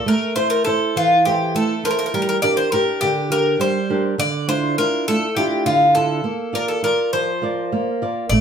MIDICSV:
0, 0, Header, 1, 4, 480
1, 0, Start_track
1, 0, Tempo, 587084
1, 70, Time_signature, 7, 3, 24, 8
1, 6874, End_track
2, 0, Start_track
2, 0, Title_t, "Bouzouki"
2, 0, Program_c, 0, 25
2, 66, Note_on_c, 0, 70, 91
2, 288, Note_off_c, 0, 70, 0
2, 291, Note_on_c, 0, 72, 93
2, 405, Note_off_c, 0, 72, 0
2, 408, Note_on_c, 0, 70, 82
2, 524, Note_off_c, 0, 70, 0
2, 527, Note_on_c, 0, 69, 88
2, 787, Note_off_c, 0, 69, 0
2, 794, Note_on_c, 0, 65, 94
2, 1016, Note_off_c, 0, 65, 0
2, 1025, Note_on_c, 0, 67, 92
2, 1251, Note_off_c, 0, 67, 0
2, 1273, Note_on_c, 0, 69, 84
2, 1510, Note_off_c, 0, 69, 0
2, 1513, Note_on_c, 0, 70, 96
2, 1548, Note_off_c, 0, 70, 0
2, 1558, Note_on_c, 0, 70, 74
2, 1615, Note_off_c, 0, 70, 0
2, 1625, Note_on_c, 0, 70, 78
2, 1674, Note_off_c, 0, 70, 0
2, 1684, Note_on_c, 0, 70, 69
2, 1741, Note_off_c, 0, 70, 0
2, 1751, Note_on_c, 0, 70, 79
2, 1805, Note_off_c, 0, 70, 0
2, 1815, Note_on_c, 0, 70, 67
2, 1861, Note_off_c, 0, 70, 0
2, 1871, Note_on_c, 0, 70, 84
2, 1936, Note_off_c, 0, 70, 0
2, 1979, Note_on_c, 0, 74, 105
2, 2097, Note_off_c, 0, 74, 0
2, 2100, Note_on_c, 0, 72, 91
2, 2217, Note_off_c, 0, 72, 0
2, 2224, Note_on_c, 0, 70, 88
2, 2451, Note_off_c, 0, 70, 0
2, 2460, Note_on_c, 0, 67, 99
2, 2712, Note_on_c, 0, 70, 99
2, 2713, Note_off_c, 0, 67, 0
2, 2946, Note_off_c, 0, 70, 0
2, 2950, Note_on_c, 0, 72, 88
2, 3286, Note_off_c, 0, 72, 0
2, 3430, Note_on_c, 0, 74, 108
2, 3654, Note_off_c, 0, 74, 0
2, 3668, Note_on_c, 0, 72, 97
2, 3906, Note_off_c, 0, 72, 0
2, 3909, Note_on_c, 0, 70, 90
2, 4150, Note_off_c, 0, 70, 0
2, 4153, Note_on_c, 0, 69, 104
2, 4376, Note_off_c, 0, 69, 0
2, 4387, Note_on_c, 0, 67, 91
2, 4612, Note_off_c, 0, 67, 0
2, 4628, Note_on_c, 0, 65, 86
2, 4853, Note_off_c, 0, 65, 0
2, 4863, Note_on_c, 0, 69, 94
2, 5352, Note_off_c, 0, 69, 0
2, 5356, Note_on_c, 0, 70, 84
2, 5461, Note_off_c, 0, 70, 0
2, 5465, Note_on_c, 0, 69, 73
2, 5588, Note_off_c, 0, 69, 0
2, 5591, Note_on_c, 0, 70, 84
2, 5826, Note_off_c, 0, 70, 0
2, 5829, Note_on_c, 0, 72, 85
2, 6518, Note_off_c, 0, 72, 0
2, 6782, Note_on_c, 0, 74, 105
2, 6874, Note_off_c, 0, 74, 0
2, 6874, End_track
3, 0, Start_track
3, 0, Title_t, "Nylon-string guitar"
3, 0, Program_c, 1, 24
3, 50, Note_on_c, 1, 57, 68
3, 296, Note_on_c, 1, 64, 49
3, 299, Note_on_c, 1, 69, 46
3, 302, Note_on_c, 1, 72, 57
3, 526, Note_off_c, 1, 57, 0
3, 534, Note_off_c, 1, 64, 0
3, 536, Note_off_c, 1, 69, 0
3, 540, Note_off_c, 1, 72, 0
3, 544, Note_on_c, 1, 64, 54
3, 547, Note_on_c, 1, 69, 45
3, 550, Note_on_c, 1, 72, 55
3, 786, Note_on_c, 1, 52, 65
3, 931, Note_off_c, 1, 64, 0
3, 932, Note_off_c, 1, 69, 0
3, 934, Note_off_c, 1, 72, 0
3, 1032, Note_on_c, 1, 64, 50
3, 1036, Note_on_c, 1, 69, 41
3, 1040, Note_on_c, 1, 72, 53
3, 1254, Note_off_c, 1, 52, 0
3, 1265, Note_on_c, 1, 57, 67
3, 1417, Note_off_c, 1, 64, 0
3, 1418, Note_off_c, 1, 69, 0
3, 1418, Note_off_c, 1, 72, 0
3, 1501, Note_on_c, 1, 64, 52
3, 1510, Note_on_c, 1, 69, 44
3, 1513, Note_on_c, 1, 72, 55
3, 1697, Note_off_c, 1, 64, 0
3, 1703, Note_off_c, 1, 69, 0
3, 1704, Note_off_c, 1, 72, 0
3, 1734, Note_off_c, 1, 57, 0
3, 1748, Note_on_c, 1, 55, 69
3, 1985, Note_off_c, 1, 55, 0
3, 1988, Note_on_c, 1, 62, 52
3, 1991, Note_on_c, 1, 67, 48
3, 1995, Note_on_c, 1, 70, 59
3, 2219, Note_off_c, 1, 62, 0
3, 2222, Note_off_c, 1, 67, 0
3, 2228, Note_on_c, 1, 62, 52
3, 2230, Note_off_c, 1, 70, 0
3, 2232, Note_on_c, 1, 67, 49
3, 2240, Note_on_c, 1, 70, 61
3, 2473, Note_on_c, 1, 50, 62
3, 2614, Note_off_c, 1, 62, 0
3, 2616, Note_off_c, 1, 67, 0
3, 2621, Note_off_c, 1, 70, 0
3, 2698, Note_on_c, 1, 62, 50
3, 2703, Note_on_c, 1, 67, 45
3, 2708, Note_on_c, 1, 70, 56
3, 2936, Note_off_c, 1, 50, 0
3, 2939, Note_on_c, 1, 55, 66
3, 3088, Note_off_c, 1, 62, 0
3, 3091, Note_off_c, 1, 67, 0
3, 3094, Note_off_c, 1, 70, 0
3, 3186, Note_on_c, 1, 62, 52
3, 3190, Note_on_c, 1, 67, 45
3, 3190, Note_on_c, 1, 70, 58
3, 3381, Note_off_c, 1, 62, 0
3, 3382, Note_off_c, 1, 67, 0
3, 3383, Note_off_c, 1, 70, 0
3, 3411, Note_off_c, 1, 55, 0
3, 3421, Note_on_c, 1, 50, 67
3, 3663, Note_on_c, 1, 62, 50
3, 3667, Note_on_c, 1, 64, 49
3, 3667, Note_on_c, 1, 65, 57
3, 3892, Note_off_c, 1, 50, 0
3, 3903, Note_off_c, 1, 62, 0
3, 3907, Note_off_c, 1, 65, 0
3, 3908, Note_off_c, 1, 64, 0
3, 3912, Note_on_c, 1, 62, 51
3, 3916, Note_on_c, 1, 65, 60
3, 3919, Note_on_c, 1, 64, 50
3, 4157, Note_on_c, 1, 57, 62
3, 4296, Note_off_c, 1, 62, 0
3, 4299, Note_off_c, 1, 65, 0
3, 4300, Note_off_c, 1, 64, 0
3, 4383, Note_on_c, 1, 62, 49
3, 4388, Note_on_c, 1, 64, 45
3, 4390, Note_on_c, 1, 65, 57
3, 4620, Note_off_c, 1, 57, 0
3, 4626, Note_on_c, 1, 50, 66
3, 4771, Note_off_c, 1, 62, 0
3, 4772, Note_off_c, 1, 64, 0
3, 4775, Note_off_c, 1, 65, 0
3, 4872, Note_on_c, 1, 62, 52
3, 4876, Note_on_c, 1, 65, 60
3, 4878, Note_on_c, 1, 64, 50
3, 5064, Note_off_c, 1, 62, 0
3, 5067, Note_off_c, 1, 64, 0
3, 5067, Note_off_c, 1, 65, 0
3, 5095, Note_off_c, 1, 50, 0
3, 5101, Note_on_c, 1, 58, 67
3, 5336, Note_on_c, 1, 65, 53
3, 5342, Note_on_c, 1, 70, 45
3, 5344, Note_on_c, 1, 74, 55
3, 5570, Note_off_c, 1, 65, 0
3, 5572, Note_off_c, 1, 58, 0
3, 5578, Note_off_c, 1, 70, 0
3, 5579, Note_on_c, 1, 65, 53
3, 5583, Note_off_c, 1, 74, 0
3, 5588, Note_on_c, 1, 70, 50
3, 5593, Note_on_c, 1, 74, 62
3, 5830, Note_on_c, 1, 53, 64
3, 5969, Note_off_c, 1, 65, 0
3, 5974, Note_off_c, 1, 70, 0
3, 5976, Note_off_c, 1, 74, 0
3, 6064, Note_on_c, 1, 65, 48
3, 6069, Note_on_c, 1, 70, 45
3, 6076, Note_on_c, 1, 74, 53
3, 6297, Note_off_c, 1, 53, 0
3, 6316, Note_on_c, 1, 58, 69
3, 6452, Note_off_c, 1, 65, 0
3, 6454, Note_off_c, 1, 70, 0
3, 6459, Note_off_c, 1, 74, 0
3, 6556, Note_on_c, 1, 65, 46
3, 6561, Note_on_c, 1, 74, 56
3, 6563, Note_on_c, 1, 70, 45
3, 6747, Note_off_c, 1, 65, 0
3, 6749, Note_off_c, 1, 70, 0
3, 6750, Note_off_c, 1, 74, 0
3, 6780, Note_off_c, 1, 58, 0
3, 6802, Note_on_c, 1, 57, 68
3, 6874, Note_off_c, 1, 57, 0
3, 6874, End_track
4, 0, Start_track
4, 0, Title_t, "Upright bass"
4, 0, Program_c, 2, 32
4, 6781, Note_on_c, 2, 33, 88
4, 6874, Note_off_c, 2, 33, 0
4, 6874, End_track
0, 0, End_of_file